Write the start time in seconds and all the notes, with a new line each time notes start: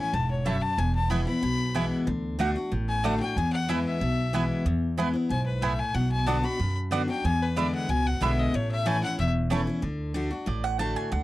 Already playing: A2 E4 G#5
0.00 C#4
0.13 E1 G#2 A5
0.31 C#5
0.45 F#2 A3 E4 C#5 E5 A5
0.62 A5
0.78 E1 E2 G#5
0.95 A5
1.10 E3 G#3 B3 E4 B4 G#5 B5
1.27 B3 E4 B5
1.42 B1 B2
1.74 E3 G#3 B3 E4 B4 G#5
2.07 D2 D3
2.39 D3 A3 D4 F#4 D5 F#5
2.56 D4 F#4
2.72 A1 A2
2.89 G#5
3.04 D3 A3 D4 F#4 D5 F#5 A5
3.20 D4 F#4 G5
3.36 E2 G#5
3.53 F#5
3.69 E3 G#3 B3 E4 B4 E5 G#5
3.85 E5
4.01 B1 B2
4.33 E3 G#3 B3 E4 B4 G#5
4.66 E2
4.97 E3 G#3 B3 E4 B4 G#5
5.13 B3 E4
5.30 B1 G#2 G#5
5.46 B4
5.62 A2 B3 E4 B4 E5 G#5
5.79 G#5
5.94 B1 B2 F#5
6.12 G#5
6.26 D3 B3 D4 F#4 D5 F#5 A5
6.43 D4 F#4 B5
6.59 F#2
6.91 D3 B3 D4 F#4 D5 F#5
7.08 D4 F#4 G5
7.24 E2 G#5
7.43 B4
7.56 D3 G#3 B3 D4 E4 G#4 D5 E5 B5
7.75 F#5
7.89 C#2 B2 G#5
8.07 F#5
8.21 B1 D3 G#3 B3 D4 E4 G#4 E5 B5
8.39 D#5
8.54 A1 A2 C#5
8.71 E5
8.86 E3 A3 C#4 E4 C#5 G#5 A5
9.03 C#4 E4 F#5
9.19 E1 E2 E5
9.50 E3 A3 C#4 E4 C#5 A5
9.67 C#4 E4
9.82 D2 D3
10.14 D3 A3 D4 F#4
10.31 D4 F#4
10.46 A1 A2 D5
10.64 F#5
10.79 D3 A3 D4 F#4 A5
10.96 G#5
11.12 D2 D3 F#5